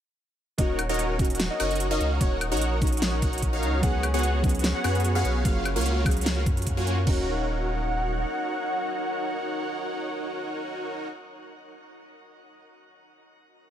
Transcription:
0.58 sub bass D#1, synth pluck A#3 C#4 D#4 F#4, supersaw synth D#4 F#4 A#4 C#5 F#5, ambient pad A#4 F#5 C#6 D#6, soft synth lead D#5, kick, closed hi-hat
0.69 harp C#4
0.78 harp F#4, closed hi-hat, high woodblock
0.89 supersaw synth D#4 F#4 A#4 C#5 F#5, soft synth lead D#5, closed hi-hat
0.94 closed hi-hat
0.99 harp C#4, closed hi-hat
1.10 harp A#4
1.18 synth pluck A#3 C#4 D#4 F#4, supersaw synth D#4 F#4 A#4 C#5 F#5, kick, closed hi-hat
1.25 closed hi-hat
1.30 harp C#4, closed hi-hat
1.35 closed hi-hat
1.40 harp F#4, snare, closed hi-hat
1.50 soft synth lead D#5
1.60 sub bass F#1, harp C#4, supersaw synth D#4 F#4 A#4 C#5 F#5, closed hi-hat, high woodblock
1.71 harp A#4, closed hi-hat
1.75 closed hi-hat
1.80 closed hi-hat
1.91 harp C#4, supersaw synth D#4 F#4 A#4 C#5 F5, soft synth lead D#5
2.00 sub bass C#2, harp F#4, closed hi-hat
2.20 sub bass D#1, synth pluck A#3 C#4 D#4 F#4, harp C#4, supersaw synth D#4 F#4 A#4 C#5 F#5, soft synth lead C#5, kick, closed hi-hat
2.31 harp A#4
2.41 closed hi-hat, high woodblock
2.52 sub bass A#1, harp C#4, supersaw synth D#4 F#4 A#4 C#5 F#5, closed hi-hat
2.57 closed hi-hat
2.61 harp F#4, closed hi-hat
2.80 synth pluck A#3 C#4 D#4 F#4, harp C#4, supersaw synth D#4 F#4 A#4 C#5 F#5, kick, closed hi-hat
2.87 closed hi-hat
2.92 harp A#4, closed hi-hat
2.97 closed hi-hat
3.02 snare, closed hi-hat
3.13 harp C#4
3.22 supersaw synth D#4 F#4 A#4 C#5 F#5, harp F#4, kick, closed hi-hat
3.33 closed hi-hat
3.38 closed hi-hat
3.42 harp C#4, kick, closed hi-hat
3.53 supersaw synth D#4 F#4 A#4 C#5 F5, harp A#4
3.63 sub bass C#2, closed hi-hat
3.73 harp C#4
3.81 sub bass C#2, synth pluck F#3 B3 C#4 D#4 G#4, supersaw synth B3 F#4 G#4 C#5 F#5, harp G#4, ambient pad G#4 F#5 B5 C#6, soft synth lead F#5, kick, closed hi-hat
4.03 harp C#4, closed hi-hat, high woodblock
4.14 supersaw synth B3 F#4 G#4 C#5 F#5, harp B4, soft synth lead F#5, closed hi-hat
4.19 closed hi-hat
4.23 closed hi-hat
4.34 harp C#4
4.42 synth pluck F#3 B3 C#4 D#4, supersaw synth B3 F#4 G#4 C#5 F#5, harp G#4, kick, closed hi-hat
4.46 synth pluck G#4, closed hi-hat
4.55 closed hi-hat
4.59 closed hi-hat
4.64 harp C#4, snare, closed hi-hat
4.75 harp B4, soft synth lead F#5
4.84 sub bass F#2, supersaw synth B3 F#4 G#4 C#5 F#5, closed hi-hat, high woodblock
4.95 harp C#4, closed hi-hat
5.00 closed hi-hat
5.04 harp G#4, closed hi-hat
5.15 supersaw synth B3 F#4 G#4 C#5 F5, soft synth lead F#5
5.25 sub bass B1, harp C#4, closed hi-hat
5.36 harp B4
5.43 sub bass F#1, synth pluck F#3 A#3 C#4 G#4 F5, ambient pad F#3 F5 A#5, supersaw synth A#3 F4 F#4 C#5 F5, soft synth lead F5, kick, closed hi-hat
5.56 harp C#4
5.65 harp F#4, closed hi-hat, high woodblock
5.76 sub bass C#2, supersaw synth A#3 F4 F#4 C#5 F5, closed hi-hat
5.81 closed hi-hat
5.85 harp C#4, closed hi-hat
5.96 harp A#4
6.04 synth pluck F#3 A#3 C#4 G#4 F5, supersaw synth F4, kick, closed hi-hat, high woodblock
6.11 closed hi-hat
6.17 harp C#4, closed hi-hat
6.21 closed hi-hat
6.26 harp F#4, snare, closed hi-hat
6.46 sub bass F#2, harp C#4, kick, closed hi-hat
6.57 harp F4, closed hi-hat
6.62 closed hi-hat
6.67 kick, closed hi-hat
6.77 supersaw synth A#3 F4 F#4 C#5 G#5, harp F#4
6.87 harp C#4, closed hi-hat
7.06 sub bass D#1, synth pluck A#3 C#4 D#4, harp C#4, supersaw synth D#4 F#4 A#4 C#5 F#5, ambient pad D#4 A#4 C#5 F#5, soft synth lead F#5, kick, floor tom, crash
7.10 synth pluck F#4

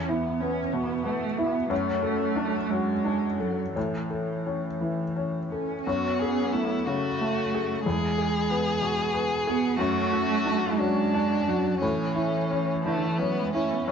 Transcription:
Already playing: felt piano E2, cello C#4
0.09 cello B3, felt piano E4
0.40 felt piano B3, cello C#4
0.73 felt piano B2, cello B3
1.04 cello A3, felt piano B3
1.37 cello B3, felt piano E4
1.70 felt piano F#2, cello A3
2.02 felt piano A4
2.36 felt piano D4
2.69 felt piano F#3, cello G#3
3.05 felt piano D4
3.39 cello F#3, felt piano A4
3.75 felt piano A2, cello E3
4.10 felt piano A4
4.46 felt piano C#4
4.81 felt piano E3
5.16 felt piano C#4
5.52 cello C#4, felt piano A4
5.86 felt piano F#2, cello B3, violin F#4
6.19 violin G#4, felt piano G#4
6.53 felt piano A3, violin E4
6.86 felt piano C#3, cello A3, violin F#4
7.21 felt piano A3
7.54 felt piano G#4
7.84 felt piano E2, cello G#3, violin G#4
8.18 felt piano G#4
8.50 felt piano B3
8.82 felt piano B2
9.14 felt piano B3
9.47 cello B3, felt piano G#4
9.77 felt piano F#2, cello A3, violin F#4
10.13 felt piano F#4
10.46 felt piano D4
10.77 felt piano F#3, cello G#3, violin D4
11.14 felt piano D4
11.46 cello F#3, felt piano F#4
11.81 felt piano A2, cello E3, violin C#4
12.15 felt piano E4
12.51 felt piano C#4
12.84 cello D3, felt piano E3, violin A3
13.04 cello E3
13.18 cello F#3, violin B3, felt piano C#4
13.38 cello G#3
13.53 cello A3, violin C#4, felt piano E4
13.73 cello B3
13.88 felt piano F#2

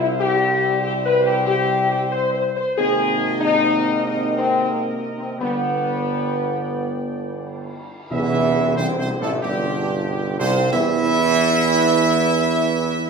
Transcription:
Already playing: tuba C2, trombone section C3 G3, trumpet section C5 E5
0.20 french horn section G4
0.83 french horn section G4
1.05 french horn section B4
1.26 french horn section G4
1.47 french horn section G4
1.91 french horn section G4
2.12 french horn section C5
2.34 french horn section C5
2.56 french horn section C5
2.76 tuba G#1, trombone section C3 A#3, french horn section G#4, trumpet section D#5
3.40 french horn section D#4, trumpet section A#4
4.06 french horn section D#4
4.37 french horn section C4
4.71 french horn section A#3
4.94 french horn section D#4
5.18 french horn section C4
5.38 tuba G1, trombone section D3 G3, french horn section B3, trumpet section D5 G5
8.11 tuba E2, trombone section E3, french horn section E4, trumpet section E5, tam-tam
8.76 tuba C2, trombone section C3, french horn section C4, trumpet section C5
8.98 tuba C2, trombone section C3, french horn section C4, trumpet section C5
9.20 tuba A1, trombone section A2, french horn section A3, trumpet section A4
9.41 tuba G1, trombone section G2, french horn section G3, trumpet section G4
10.39 tuba C2, trombone section C3, french horn section C4, trumpet section C5
10.71 tuba E2, trombone section E3, french horn section E4, trumpet section E5

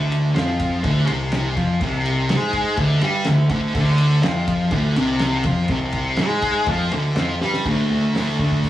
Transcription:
Already playing: picked electric bass D2, distorted electric guitar D3
0.12 ride
0.35 picked electric bass F2, distorted electric guitar F3, snare, ride
0.60 kick, ride
0.84 picked electric bass D2, distorted electric guitar D3, kick, ride
1.07 picked electric bass C2, distorted electric guitar C3, ride
1.32 snare, ride
1.57 picked electric bass F2, distorted electric guitar F3, kick, ride
1.81 picked electric bass C2, distorted electric guitar C3, kick, ride
2.06 ride
2.29 picked electric bass G#2, distorted electric guitar G#3, snare, ride
2.53 kick, ride
2.77 picked electric bass D2, distorted electric guitar D3, kick, ride
3.01 picked electric bass G2, distorted electric guitar G3, ride
3.24 picked electric bass D2, distorted electric guitar D3, snare, ride
3.49 picked electric bass D2, distorted electric guitar D3, kick, ride
3.75 picked electric bass D2, distorted electric guitar D3, kick, crash
3.98 ride
4.23 picked electric bass F2, distorted electric guitar F3, snare, ride
4.48 kick, ride
4.71 picked electric bass D2, distorted electric guitar D3, kick, ride
4.96 picked electric bass C2, distorted electric guitar C3, ride
5.19 snare, ride
5.43 picked electric bass F2, distorted electric guitar F3, kick, ride
5.68 picked electric bass C2, distorted electric guitar C3, kick, ride
5.92 kick, ride
6.16 picked electric bass G#2, snare, ride
6.21 distorted electric guitar G#3
6.42 kick, ride
6.66 picked electric bass F2, distorted electric guitar F3, kick, ride
6.92 picked electric bass D2, distorted electric guitar D3, ride
7.16 picked electric bass F2, distorted electric guitar F3, snare, ride
7.40 picked electric bass G2, distorted electric guitar G3, snare
7.54 snare
7.65 picked electric bass D2, distorted electric guitar D3 A3, kick, crash
7.70 distorted electric guitar D4
7.91 picked electric bass D2
8.14 picked electric bass D2, distorted electric guitar D3 A3, snare, open hi-hat
8.20 distorted electric guitar D4
8.39 picked electric bass D2, distorted electric guitar D4, kick
8.44 distorted electric guitar A3
8.52 kick
8.64 picked electric bass D2, kick, open hi-hat

